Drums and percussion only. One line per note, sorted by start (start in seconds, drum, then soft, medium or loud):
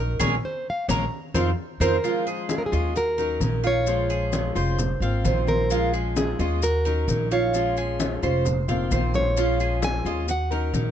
0.21 high conga loud
0.21 maracas loud
0.89 high conga loud
0.89 maracas loud
1.35 high conga loud
1.35 maracas loud
1.81 high conga loud
1.81 maracas loud
2.04 high conga soft
2.04 maracas medium
2.26 high conga soft
2.26 maracas soft
2.49 high conga loud
2.49 maracas medium
2.73 maracas soft
2.95 high conga soft
2.95 maracas medium
3.18 high conga soft
3.18 maracas soft
3.41 high conga medium
3.41 maracas medium
3.64 high conga soft
3.64 maracas soft
3.87 high conga soft
3.87 maracas medium
4.10 high conga soft
4.10 maracas soft
4.32 high conga loud
4.32 maracas medium
4.56 high conga soft
4.56 maracas soft
4.78 high conga soft
4.78 low conga medium
4.78 maracas medium
5.01 high conga soft
5.01 maracas soft
5.24 high conga medium
5.24 maracas medium
5.47 high conga medium
5.47 maracas soft
5.70 high conga soft
5.70 maracas medium
5.93 high conga soft
5.93 maracas soft
6.16 high conga medium
6.16 maracas medium
6.40 maracas soft
6.62 high conga soft
6.62 maracas medium
6.86 high conga soft
6.86 maracas soft
7.08 high conga medium
7.08 maracas medium
7.31 high conga soft
7.31 maracas soft
7.54 high conga soft
7.54 maracas medium
7.77 high conga soft
7.77 maracas soft
8.00 high conga loud
8.00 maracas medium
8.23 high conga soft
8.23 maracas soft
8.45 high conga soft
8.45 low conga medium
8.45 maracas medium
8.69 high conga soft
8.69 low conga medium
8.69 maracas soft
8.91 high conga medium
8.91 maracas medium
9.14 low conga medium
9.14 maracas soft
9.37 high conga soft
9.37 maracas medium
9.60 high conga soft
9.60 maracas soft
9.82 high conga loud
9.82 maracas medium
10.06 maracas soft
10.28 high conga soft
10.28 maracas medium
10.51 high conga soft
10.51 maracas soft
10.74 high conga medium
10.74 maracas medium